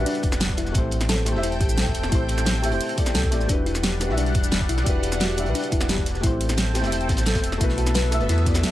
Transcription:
Already playing: analog synth pad G3 D4 F#5, felt piano G3 D4 E5
0.00 felt piano E4 F#4 B4
0.06 synth arpeggio sound D4, closed hi-hat, open hi-hat, shaker
0.15 closed hi-hat
0.23 sub bass E1, kick, closed hi-hat, shaker
0.31 snare, shaker
0.40 snare, closed hi-hat, shaker
0.49 kick, snare, closed hi-hat
0.57 synth arpeggio sound E4, snare, closed hi-hat, open hi-hat
0.66 snare, shaker
0.72 sub bass A1, felt piano A3 C4 E4, analog synth pad C4 A4 G5, kick, closed hi-hat, shaker
0.77 felt piano G4 C5
0.91 closed hi-hat
1.01 snare, closed hi-hat, shaker
1.09 synth arpeggio sound A4, snare, closed hi-hat, shaker
1.17 snare
1.25 felt piano A3 C4 E4 G4 C5, snare, closed hi-hat, open hi-hat, shaker
1.32 sub bass E1, felt piano A3 C4 E4, snare
1.36 felt piano G4 E5
1.43 synth arpeggio sound E4, closed hi-hat, shaker
1.52 closed hi-hat
1.60 sub bass A1, synth arpeggio sound G4, kick, closed hi-hat, shaker
1.69 shaker
1.78 synth arpeggio sound A4, snare, closed hi-hat, shaker
1.86 kick, snare, closed hi-hat
1.94 sub bass E1, closed hi-hat, open hi-hat
2.03 snare, shaker
2.09 sub bass A1, felt piano A3 C4 E4, synth arpeggio sound E4, kick, closed hi-hat, shaker
2.13 felt piano G4 C5
2.29 closed hi-hat
2.38 snare, closed hi-hat, shaker
2.45 snare, closed hi-hat, shaker
2.55 snare
2.62 felt piano A3 C4 E4 G4 E5, synth arpeggio sound G4, closed hi-hat, open hi-hat, shaker
2.71 sub bass E1, felt piano A3 C4 E4 G4 C5, closed hi-hat
2.81 closed hi-hat, open hi-hat, shaker
2.89 closed hi-hat
2.96 felt piano A3 C4 E4 G4 D5, kick, closed hi-hat, shaker
3.06 snare, shaker
3.14 sub bass C2, synth arpeggio sound A4, snare, closed hi-hat, shaker
3.23 kick, snare, closed hi-hat
3.31 sub bass A1, felt piano A3 C4 E4 G4 D5, snare, closed hi-hat, open hi-hat
3.40 snare, shaker
3.47 sub bass E1, felt piano G3 D4 E4, analog synth pad G3 D4 F#5, synth arpeggio sound D4, kick, closed hi-hat, shaker
3.51 felt piano F#4 B4
3.66 synth arpeggio sound E4, closed hi-hat
3.75 snare, closed hi-hat, shaker
3.83 synth arpeggio sound G4, snare, closed hi-hat, shaker
3.92 snare
3.99 felt piano G3 D4 E4 F#4 B4, snare, closed hi-hat, open hi-hat, shaker
4.06 sub bass B1, felt piano G3 D4 E4, snare
4.11 felt piano F#4 E5
4.17 synth arpeggio sound D4, closed hi-hat, shaker
4.26 closed hi-hat
4.34 sub bass E1, kick, closed hi-hat, shaker
4.43 shaker
4.52 snare, closed hi-hat, shaker
4.61 kick, snare, closed hi-hat
4.69 sub bass B1, synth arpeggio sound E4, closed hi-hat, open hi-hat
4.78 snare, shaker
4.83 sub bass E1, felt piano G3 D4 E4, kick, closed hi-hat, shaker
4.88 felt piano F#4 B4
5.03 closed hi-hat
5.12 snare, closed hi-hat, shaker
5.20 synth arpeggio sound F#4, snare, closed hi-hat, shaker
5.30 snare
5.36 felt piano G3 D4 E4 F#4 E5, closed hi-hat, open hi-hat, shaker
5.43 sub bass B1, felt piano G3 D4 E4, closed hi-hat
5.48 felt piano F#4 B4
5.55 synth arpeggio sound D4, closed hi-hat, open hi-hat, shaker
5.63 closed hi-hat
5.72 sub bass E1, synth arpeggio sound E4, kick, closed hi-hat, shaker
5.81 snare, shaker
5.89 synth arpeggio sound G4, snare, closed hi-hat, shaker
5.98 kick, snare, closed hi-hat
6.06 snare, closed hi-hat, open hi-hat
6.15 snare, shaker
6.21 sub bass A1, felt piano A3 C4 E4, analog synth pad C4 A4 G5, synth arpeggio sound E4, kick, closed hi-hat, shaker
6.25 felt piano G4 C5
6.41 closed hi-hat
6.49 snare, closed hi-hat, shaker
6.57 snare, closed hi-hat, shaker
6.66 snare
6.74 felt piano A3 C4 E4 G4 C5, synth arpeggio sound G4, snare, closed hi-hat, open hi-hat, shaker
6.81 sub bass E1, felt piano A3 C4 E4, snare, closed hi-hat
6.85 felt piano G4 E5
6.92 closed hi-hat, shaker
7.00 closed hi-hat
7.09 sub bass A1, kick, snare, closed hi-hat, shaker
7.17 snare, closed hi-hat, shaker
7.26 synth arpeggio sound A4, snare, closed hi-hat, shaker
7.34 kick, snare, closed hi-hat
7.44 sub bass E1, closed hi-hat, open hi-hat
7.52 snare, shaker
7.58 sub bass B1, felt piano A3 B3 E4, analog synth pad B3 E5, synth arpeggio sound E4, kick, closed hi-hat, shaker
7.62 felt piano F#4 B4
7.69 snare
7.78 synth arpeggio sound F#4, closed hi-hat
7.87 snare, closed hi-hat, shaker
7.94 synth arpeggio sound B4, snare, closed hi-hat, shaker
8.03 snare
8.11 felt piano A3 B3 E4 F#4 E5, snare, closed hi-hat, open hi-hat, shaker
8.19 sub bass F#1, felt piano A3 B3 E4 F#4 B4, closed hi-hat
8.29 sub bass E2, synth arpeggio sound E4, snare, closed hi-hat, shaker
8.38 snare, closed hi-hat
8.45 felt piano A3 B3 E4 F#4 D5, kick, snare, closed hi-hat, shaker
8.54 snare, closed hi-hat, shaker
8.63 snare, closed hi-hat, shaker

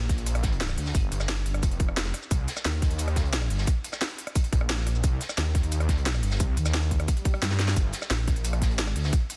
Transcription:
Already playing: detuned saw bass A#1
0.09 kick, snare, closed hi-hat
0.18 closed hi-hat
0.26 closed hi-hat, shaker
0.35 cross-stick, closed hi-hat
0.43 kick, snare, closed hi-hat
0.52 closed hi-hat
0.61 snare, closed hi-hat, shaker
0.69 cross-stick, snare, shaker
0.78 detuned saw bass D2, closed hi-hat, open hi-hat
0.86 snare, shaker
0.95 fm bass G1, kick, closed hi-hat, shaker
1.12 detuned saw bass G1, closed hi-hat, shaker
1.20 cross-stick, snare, shaker
1.28 snare, closed hi-hat, shaker
1.37 closed hi-hat
1.46 detuned saw bass G1, closed hi-hat
1.54 cross-stick, closed hi-hat
1.63 detuned saw bass F1, kick, closed hi-hat, shaker
1.71 closed hi-hat
1.79 kick, closed hi-hat
1.88 cross-stick
1.97 snare, closed hi-hat, shaker
2.05 snare, shaker
2.14 cross-stick, closed hi-hat
2.23 shaker
2.31 detuned saw bass C2, kick, closed hi-hat, shaker
2.48 snare, closed hi-hat, shaker
2.57 cross-stick, snare, shaker
2.64 detuned saw bass D#2, snare, closed hi-hat, shaker
2.82 kick, snare, closed hi-hat
2.91 closed hi-hat
2.98 closed hi-hat, shaker
3.08 cross-stick, closed hi-hat
3.16 kick, snare, closed hi-hat
3.25 closed hi-hat
3.33 snare, closed hi-hat, shaker
3.42 cross-stick, snare, shaker
3.50 detuned saw bass G1, closed hi-hat, open hi-hat
3.58 snare, shaker
3.67 kick, closed hi-hat, shaker
3.84 closed hi-hat, shaker
3.92 cross-stick, snare, shaker
4.01 snare, closed hi-hat, shaker
4.10 closed hi-hat
4.18 closed hi-hat
4.27 cross-stick, closed hi-hat
4.36 kick, closed hi-hat, shaker
4.44 closed hi-hat
4.53 detuned saw bass A#1, kick, closed hi-hat
4.61 cross-stick
4.69 snare, closed hi-hat, shaker
4.78 snare, shaker
4.86 cross-stick, closed hi-hat
4.95 shaker
5.04 detuned saw bass C2, kick, closed hi-hat, shaker
5.21 snare, closed hi-hat, shaker
5.29 cross-stick, snare, shaker
5.37 detuned saw bass D#2, snare, closed hi-hat, shaker
5.55 kick, snare, closed hi-hat
5.63 closed hi-hat
5.72 closed hi-hat, shaker
5.80 cross-stick, closed hi-hat
5.89 kick, snare, closed hi-hat
5.98 closed hi-hat
6.06 snare, closed hi-hat, shaker
6.14 cross-stick, snare, shaker
6.23 detuned saw bass G1, closed hi-hat, open hi-hat
6.31 snare, shaker
6.40 detuned saw bass C2, kick, closed hi-hat, shaker
6.57 fm bass D#2, closed hi-hat, shaker
6.66 cross-stick, snare, closed hi-hat, shaker
6.74 snare, closed hi-hat, shaker
6.83 closed hi-hat, shaker
6.91 kick, closed hi-hat
7.00 cross-stick, closed hi-hat
7.08 kick, closed hi-hat, swell, shaker
7.17 closed hi-hat
7.25 kick, closed hi-hat
7.34 cross-stick, closed hi-hat
7.42 fm bass G2, snare, closed hi-hat, shaker
7.50 snare, closed hi-hat, shaker
7.59 snare, closed hi-hat
7.68 snare, closed hi-hat, shaker
7.76 detuned saw bass G1, kick, closed hi-hat, shaker
7.93 snare, closed hi-hat, shaker
8.02 cross-stick, snare, shaker
8.10 detuned saw bass A#1, snare, closed hi-hat, shaker
8.27 kick, snare, closed hi-hat
8.36 closed hi-hat
8.45 closed hi-hat, shaker
8.53 cross-stick, closed hi-hat
8.62 kick, snare, closed hi-hat
8.70 detuned saw bass A1, closed hi-hat
8.78 snare, closed hi-hat, shaker
8.86 cross-stick, snare, shaker
8.96 detuned saw bass D2, closed hi-hat, open hi-hat
9.04 snare, shaker
9.13 kick, closed hi-hat, shaker
9.30 closed hi-hat, shaker

